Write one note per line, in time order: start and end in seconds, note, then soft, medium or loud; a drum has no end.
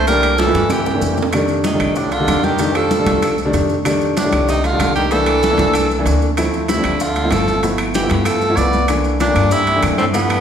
0.00 0.49 C2 medium
0.07 0.35 E3 medium
0.07 0.42 G3 medium
0.07 0.36 A3 medium
0.07 0.36 A#3 medium
0.07 0.36 D4 medium
0.07 0.41 A#4 loud
0.07 high bongo medium
0.07 high conga soft
0.07 high timbale medium
0.07 maracas medium
0.23 high conga soft
0.23 high timbale medium
0.23 claves medium
0.23 maracas soft
0.38 0.71 E3 medium
0.38 0.74 A4 medium
0.38 high bongo medium
0.38 high conga medium
0.38 high timbale medium
0.38 maracas medium
0.47 0.80 E3 medium
0.47 0.80 A3 medium
0.47 0.80 A#3 medium
0.47 0.80 E4 medium
0.47 high timbale medium
0.54 0.98 G2 medium
0.54 high bongo medium
0.54 high conga medium
0.54 maracas soft
0.60 high timbale medium
0.70 1.18 E3 medium
0.70 1.18 G4 medium
0.70 low bongo medium
0.70 high conga soft
0.70 low timbale medium
0.70 claves medium
0.70 maracas medium
0.80 low timbale medium
0.86 low bongo medium
0.86 high conga soft
0.86 maracas soft
0.91 1.22 E3 medium
0.91 1.22 A3 medium
0.91 1.22 A#3 medium
0.91 1.22 D4 medium
0.91 low timbale medium
1.02 1.75 F2 medium
1.02 low bongo medium
1.02 high conga soft
1.02 maracas medium
1.12 low timbale medium
1.17 low bongo loud
1.17 maracas soft
1.23 low timbale medium
1.33 1.61 D#3 medium
1.33 1.61 G3 medium
1.33 1.61 A3 medium
1.33 1.61 D4 medium
1.33 high bongo medium
1.33 high conga soft
1.33 high timbale medium
1.33 claves medium
1.33 maracas medium
1.48 high conga soft
1.48 maracas soft
1.64 1.97 C3 medium
1.64 1.98 D#4 medium
1.64 high bongo medium
1.64 high conga medium
1.64 high timbale medium
1.64 low timbale medium
1.64 maracas medium
1.73 2.06 D#3 medium
1.73 2.06 G3 medium
1.73 2.06 A3 medium
1.73 2.06 D4 medium
1.80 2.24 C2 medium
1.80 high bongo soft
1.80 high conga soft
1.80 high timbale medium
1.80 claves medium
1.80 maracas soft
1.96 2.13 A2 medium
1.96 2.14 D4 medium
1.96 high bongo medium
1.96 high conga soft
1.96 maracas medium
2.12 2.45 D3 medium
2.12 2.46 F4 medium
2.12 high bongo soft
2.12 high conga soft
2.12 high timbale medium
2.12 maracas soft
2.20 2.47 D#3 medium
2.20 2.48 G3 medium
2.20 2.48 A3 medium
2.20 2.48 D4 medium
2.27 3.01 F2 medium
2.27 high bongo soft
2.27 low bongo medium
2.27 high conga medium
2.27 high timbale medium
2.27 low timbale medium
2.27 claves medium
2.27 maracas medium
2.43 2.77 D#3 medium
2.43 2.78 G4 medium
2.43 high bongo soft
2.43 high conga medium
2.43 maracas soft
2.58 2.87 D#3 medium
2.58 2.87 G3 medium
2.58 2.87 A3 medium
2.58 2.87 D4 medium
2.58 high bongo medium
2.58 high conga soft
2.58 high timbale medium
2.58 maracas medium
2.75 3.38 F3 medium
2.75 3.39 A4 medium
2.75 high conga soft
2.75 high timbale medium
2.75 claves medium
2.75 maracas soft
2.91 high bongo medium
2.91 high conga medium
2.91 low timbale medium
2.91 maracas medium
2.98 3.32 D#3 medium
2.98 3.32 G3 medium
2.98 3.32 A3 medium
2.98 3.32 D4 medium
3.06 3.50 C2 medium
3.06 high bongo soft
3.06 high conga medium
3.06 high timbale medium
3.06 maracas soft
3.22 high bongo medium
3.22 high conga soft
3.22 high timbale medium
3.22 claves medium
3.22 maracas medium
3.38 high bongo soft
3.38 high conga soft
3.38 maracas soft
3.45 3.73 D#3 medium
3.45 3.73 G3 medium
3.45 3.73 A3 medium
3.45 3.74 D4 loud
3.53 4.27 F2 medium
3.53 high bongo soft
3.53 low bongo medium
3.53 high conga soft
3.53 high timbale medium
3.53 low timbale medium
3.53 maracas medium
3.69 high bongo soft
3.69 maracas soft
3.85 4.13 D#3 medium
3.85 4.13 G3 medium
3.85 4.13 A3 medium
3.85 4.13 D4 loud
3.85 high bongo medium
3.85 high conga soft
3.85 high timbale medium
3.85 claves medium
3.85 maracas medium
4.01 high conga soft
4.01 maracas soft
4.17 4.46 A2 medium
4.17 4.47 D4 medium
4.17 high bongo medium
4.17 high conga medium
4.17 high timbale medium
4.17 low timbale soft
4.17 maracas medium
4.25 4.58 D#3 medium
4.25 4.58 G3 medium
4.25 4.58 A3 medium
4.25 4.58 D4 medium
4.33 4.77 C2 medium
4.33 high bongo soft
4.33 high conga soft
4.33 high timbale medium
4.33 claves medium
4.33 maracas soft
4.48 4.66 C3 medium
4.48 4.67 D#4 medium
4.48 high bongo medium
4.48 high conga soft
4.48 maracas medium
4.64 4.96 D3 medium
4.64 4.95 F4 medium
4.64 high bongo soft
4.64 high conga soft
4.64 high timbale medium
4.64 maracas soft
4.72 5.00 D#3 medium
4.72 5.00 G3 medium
4.72 5.00 A3 medium
4.72 5.00 D4 medium
4.79 5.53 C2 medium
4.79 high bongo soft
4.79 low bongo medium
4.79 high conga medium
4.79 high timbale medium
4.79 low timbale medium
4.79 claves medium
4.79 maracas medium
4.96 5.13 D#3 medium
4.96 5.14 G4 medium
4.96 high bongo soft
4.96 maracas soft
5.11 6.06 E3 medium
5.11 5.39 E3 medium
5.11 5.39 A3 medium
5.11 5.40 A#3 medium
5.11 5.39 D4 medium
5.11 6.06 A4 loud
5.11 high bongo medium
5.11 high conga soft
5.11 high timbale medium
5.11 maracas medium
5.26 high conga soft
5.26 high timbale medium
5.26 claves medium
5.26 maracas soft
5.42 high bongo medium
5.42 high conga medium
5.42 low timbale medium
5.42 maracas medium
5.51 5.84 E3 medium
5.51 5.84 A3 medium
5.51 5.84 A#3 medium
5.51 5.84 D4 loud
5.58 6.02 C2 medium
5.58 high bongo soft
5.58 high conga medium
5.58 high timbale medium
5.58 maracas soft
5.74 high bongo medium
5.74 high conga soft
5.74 high timbale medium
5.74 claves medium
5.74 maracas medium
5.90 high bongo soft
5.90 high conga soft
5.90 maracas soft
5.99 6.26 E3 medium
5.99 6.26 A3 medium
5.99 6.26 A#3 medium
5.99 6.26 D4 loud
6.05 6.79 D2 medium
6.05 high bongo soft
6.05 low bongo medium
6.05 high conga soft
6.05 high timbale medium
6.05 low timbale medium
6.05 maracas medium
6.22 high bongo soft
6.22 maracas soft
6.37 6.65 F3 medium
6.37 6.65 A3 medium
6.37 6.65 C4 medium
6.37 6.66 E4 medium
6.37 high bongo medium
6.37 high conga soft
6.37 high timbale medium
6.37 claves medium
6.37 maracas medium
6.53 high conga soft
6.53 maracas soft
6.68 7.01 C3 medium
6.68 7.03 E4 medium
6.68 high bongo medium
6.68 high conga medium
6.68 high timbale medium
6.68 low timbale medium
6.68 maracas medium
6.77 7.10 F3 medium
6.77 7.10 A3 medium
6.77 7.10 C4 medium
6.77 7.10 D4 medium
6.84 7.28 D2 medium
6.84 high bongo soft
6.84 high conga soft
6.84 high timbale medium
6.84 claves medium
6.84 maracas soft
7.00 7.34 D3 medium
7.00 7.33 F4 medium
7.00 high bongo medium
7.00 high conga soft
7.00 maracas medium
7.16 high bongo soft
7.16 high conga soft
7.16 high timbale medium
7.16 maracas soft
7.24 7.51 F3 medium
7.24 7.51 A3 medium
7.24 7.52 C4 medium
7.24 7.52 E4 medium
7.31 8.05 G1 medium
7.31 7.63 F3 medium
7.31 7.63 A4 medium
7.31 high bongo soft
7.31 low bongo medium
7.31 high conga medium
7.31 high timbale medium
7.31 low timbale medium
7.31 claves medium
7.31 maracas medium
7.48 high bongo soft
7.48 high conga medium
7.48 maracas soft
7.63 7.91 F3 medium
7.63 7.91 A3 medium
7.63 7.91 B3 medium
7.63 7.91 E4 medium
7.63 high bongo medium
7.63 high conga soft
7.63 high timbale medium
7.63 maracas medium
7.78 high conga soft
7.78 high timbale medium
7.78 claves medium
7.78 maracas soft
7.94 8.26 E3 medium
7.94 8.27 G4 medium
7.94 high bongo medium
7.94 high conga medium
7.94 low timbale medium
7.94 maracas medium
8.02 8.35 F3 medium
8.02 8.36 A3 medium
8.02 8.36 B3 medium
8.02 8.36 E4 medium
8.10 8.54 G2 medium
8.10 high bongo soft
8.10 high conga medium
8.10 high timbale medium
8.10 maracas soft
8.24 8.58 F3 medium
8.24 8.58 A4 medium
8.24 high bongo medium
8.24 high conga soft
8.24 high timbale medium
8.24 claves medium
8.24 maracas medium
8.41 high bongo soft
8.41 high conga soft
8.41 maracas soft
8.49 8.77 F3 medium
8.49 8.77 A3 medium
8.49 8.77 B3 medium
8.49 8.77 E4 medium
8.56 9.30 C2 medium
8.56 8.88 B3 medium
8.56 8.88 D5 medium
8.56 high bongo soft
8.56 low bongo medium
8.56 high conga soft
8.56 high timbale medium
8.56 low timbale medium
8.56 maracas medium
8.73 high bongo soft
8.73 high conga medium
8.73 maracas soft
8.88 9.16 E3 medium
8.88 9.16 A3 medium
8.88 9.16 A#3 medium
8.88 9.16 D4 medium
8.88 high bongo medium
8.88 high conga soft
8.88 high timbale medium
8.88 claves medium
8.88 maracas medium
9.04 high conga soft
9.04 maracas soft
9.20 9.52 A#2 medium
9.20 9.54 D4 medium
9.20 high bongo medium
9.20 high conga medium
9.20 high timbale medium
9.20 low timbale medium
9.20 maracas medium
9.28 9.61 E3 medium
9.28 9.61 A3 medium
9.28 9.61 A#3 medium
9.28 9.61 D4 medium
9.35 9.80 G2 medium
9.35 high bongo soft
9.35 high conga soft
9.35 high timbale medium
9.35 claves medium
9.35 maracas soft
9.51 9.82 C3 medium
9.51 9.83 E4 loud
9.51 high bongo medium
9.51 high conga soft
9.51 maracas medium
9.67 high bongo soft
9.67 high conga soft
9.67 high timbale medium
9.67 maracas soft
9.75 10.02 E3 medium
9.75 10.03 A3 medium
9.75 10.02 A#3 medium
9.75 10.03 D4 medium
9.82 10.40 G2 medium
9.82 high bongo soft
9.82 low bongo medium
9.82 high conga medium
9.82 high timbale medium
9.82 low timbale medium
9.82 claves medium
9.82 maracas medium
9.97 10.05 A2 medium
9.97 10.05 C4 medium
9.97 high bongo soft
9.97 high conga medium
9.97 maracas soft
10.13 10.40 G2 medium
10.13 10.40 F3 medium
10.13 10.40 A3 medium
10.13 10.40 B3 medium
10.13 10.40 E4 medium
10.13 high bongo medium
10.13 high conga soft
10.13 high timbale medium
10.13 maracas medium
10.30 high conga soft
10.30 high timbale medium
10.30 claves medium
10.30 maracas soft